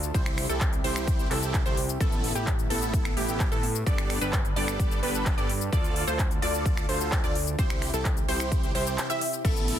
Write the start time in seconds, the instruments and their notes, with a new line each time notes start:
Already playing: analog synth bass D2, analog synth pad D3 D4 F4 A4
0.03 closed hi-hat, shaker
0.14 analog synth bass C2, analog synth pad C3 C4 E4 G4, supersaw synth E4 G4 C5, synth pluck C5, kick, closed hi-hat, shaker
0.26 finger snap, closed hi-hat, shaker
0.38 finger snap, open hi-hat
0.49 analog synth bass C2, supersaw synth E4 G4 A4, synth pluck A4, shaker
0.61 kick, clap, closed hi-hat, shaker
0.73 closed hi-hat, shaker
0.84 analog synth bass C2, supersaw synth E4 G4 C5, synth pluck C5, open hi-hat
0.96 finger snap, shaker
1.08 kick, closed hi-hat, shaker
1.19 closed hi-hat, shaker
1.31 analog synth bass C2, supersaw synth E4 G4 A4, synth pluck A4, clap, open hi-hat
1.43 closed hi-hat, shaker
1.54 kick, clap, closed hi-hat, shaker
1.66 analog synth bass C2, supersaw synth E4 G4 C5, synth pluck C5, closed hi-hat, shaker
1.77 open hi-hat
1.89 closed hi-hat, shaker
2.00 analog synth bass A1, analog synth pad A3 B3 E4, supersaw synth B3 E4 A4, synth pluck A4, kick, closed hi-hat, shaker
2.12 closed hi-hat, shaker
2.24 open hi-hat
2.35 analog synth bass A1, supersaw synth B3 E4 G4, synth pluck G4, closed hi-hat, shaker
2.47 kick, clap, closed hi-hat, shaker
2.59 closed hi-hat, shaker
2.70 analog synth bass A1, supersaw synth B3 E4 A4, synth pluck A4, open hi-hat
2.82 closed hi-hat, shaker
2.94 kick, closed hi-hat, shaker
3.05 finger snap, closed hi-hat, shaker
3.17 analog synth bass A1, supersaw synth B3 E4 G4, synth pluck G4, open hi-hat
3.29 closed hi-hat, shaker
3.40 kick, clap, closed hi-hat, shaker
3.52 analog synth bass A2, supersaw synth B3 E4 A4, synth pluck A4, closed hi-hat, shaker
3.63 open hi-hat
3.75 closed hi-hat, shaker
3.87 analog synth bass G1, analog synth pad G3 D4 A4 B4, supersaw synth B3 D4 G4 A4 D5, synth pluck D5, kick, closed hi-hat, shaker
3.98 finger snap, closed hi-hat, shaker
4.10 finger snap, open hi-hat
4.21 analog synth bass G1, supersaw synth B3 D4 G4 A4 B4, synth pluck B4, closed hi-hat, shaker
4.33 kick, clap, closed hi-hat, shaker
4.45 closed hi-hat, shaker
4.56 analog synth bass G1, supersaw synth B3 D4 G4 A4 D5, synth pluck D5, open hi-hat
4.68 finger snap, shaker
4.80 kick, closed hi-hat, shaker
4.91 closed hi-hat, shaker
5.03 analog synth bass G1, supersaw synth B3 D4 G4 A4 B4, synth pluck B4, open hi-hat
5.15 shaker
5.26 kick, clap, closed hi-hat, shaker
5.38 analog synth bass G2, supersaw synth B3 D4 G4 A4 D5, synth pluck D5, closed hi-hat, shaker
5.49 open hi-hat
5.61 closed hi-hat, shaker
5.73 analog synth bass D2, analog synth pad D3 D4 F4 A4, supersaw synth F4 A4 D5, synth pluck D5, kick, closed hi-hat, shaker
5.84 closed hi-hat, shaker
5.96 open hi-hat
6.07 analog synth bass D2, supersaw synth F4 A4 C5, synth pluck C5, closed hi-hat, shaker
6.19 kick, clap, closed hi-hat, shaker
6.31 closed hi-hat, shaker
6.42 analog synth bass D2, supersaw synth F4 A4 D5, synth pluck D5, open hi-hat
6.54 closed hi-hat, shaker
6.66 kick, closed hi-hat, shaker
6.77 finger snap, closed hi-hat, shaker
6.89 analog synth bass D2, supersaw synth F4 A4 C5, synth pluck C5, open hi-hat
7.01 closed hi-hat, shaker
7.12 kick, clap, closed hi-hat, shaker
7.23 analog synth bass D2, supersaw synth F4 A4 D5, synth pluck D5, closed hi-hat, shaker
7.35 open hi-hat
7.47 closed hi-hat, shaker
7.58 analog synth bass C2, analog synth pad C3 C4 E4 G4, supersaw synth E4 G4 C5, synth pluck C5, kick, closed hi-hat, shaker
7.70 finger snap, closed hi-hat, shaker
7.82 finger snap, open hi-hat
7.93 analog synth bass C2, supersaw synth E4 G4 A4, synth pluck A4, closed hi-hat, shaker
8.05 kick, clap, closed hi-hat, shaker
8.17 closed hi-hat, shaker
8.28 analog synth bass C2, supersaw synth E4 G4 C5, synth pluck C5, open hi-hat
8.40 finger snap, shaker
8.52 kick, closed hi-hat, shaker
8.63 closed hi-hat, shaker
8.75 analog synth bass C2, supersaw synth E4 G4 C5, synth pluck C5, open hi-hat
8.87 closed hi-hat, shaker
8.98 clap, closed hi-hat, shaker
9.10 supersaw synth E4 G4 E5, synth pluck E5, closed hi-hat, shaker
9.21 open hi-hat
9.33 closed hi-hat, shaker
9.44 analog synth bass A1, analog synth pad A3 B3 E4, supersaw synth B3 E4 A4, synth pluck A4, kick, closed hi-hat, crash, shaker
9.56 closed hi-hat, shaker
9.68 open hi-hat, ride